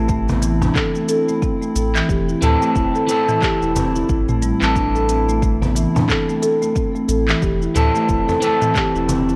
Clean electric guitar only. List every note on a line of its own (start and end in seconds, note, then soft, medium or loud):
0.00 2.38 E3 medium
0.00 2.40 A4 loud
2.41 3.05 E3 medium
2.41 3.06 C4 medium
2.41 3.06 A4 loud
3.07 4.57 E3 loud
3.07 4.58 C4 medium
3.11 4.59 A4 loud
4.60 7.72 E3 medium
4.60 7.74 A4 loud
7.75 8.39 E3 loud
7.75 8.39 C4 medium
7.75 8.40 A4 loud
8.41 9.36 E3 loud
8.41 9.36 C4 medium
8.41 9.36 A4 loud